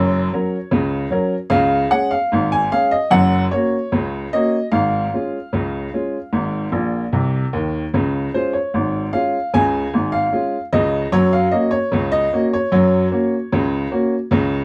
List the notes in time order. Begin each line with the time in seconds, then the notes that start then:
Already playing: F#1 F#2 C#5
0.33 F#3 C#4 A#4
0.71 C#2 C#3
1.11 F#3 C#4 A#4
1.50 C#2 C#3 F5
1.91 G#3 C#4 G#4 F#5
2.11 F5
2.32 G#1 G#2
2.52 G#5
2.72 G#3 C#4 G#4 F5
2.91 D#5
3.11 F#1 F#2 F#5
3.51 A#3 C#4 F#4 C#5
3.92 C#2 C#3
4.33 A#3 C#4 F#4 D#5
4.72 G#1 G#2 F5
5.14 G#3 C#4 F4
5.53 C#2 C#3
5.94 G#3 C#4 F4
6.33 G#1 G#2
6.72 A#1 A#2
7.13 C2 C3
7.53 D#2 D#3
7.94 C#2 C#3
8.34 G#3 C#4 F4 C5
8.53 C#5
8.74 G#1 G#2
9.13 G#3 C#4 F4 F5
9.54 C#2 C#3 G#5
9.94 G#1 G#2
10.12 F5
10.32 G#3 C#4 F4
10.73 C#2 C#3 D#5
11.12 F#2 F#3 C#5
11.33 F5
11.51 A#3 C#4 F#4 D#5
11.71 C#5
11.92 C#2 C#3
12.12 D#5
12.33 A#3 C#4 F#4
12.53 C#5
12.72 F#2 F#3
13.11 A#3 C#4 F#4
13.52 C#2 C#3
13.91 A#3 C#4 F#4
14.31 C#2 C#3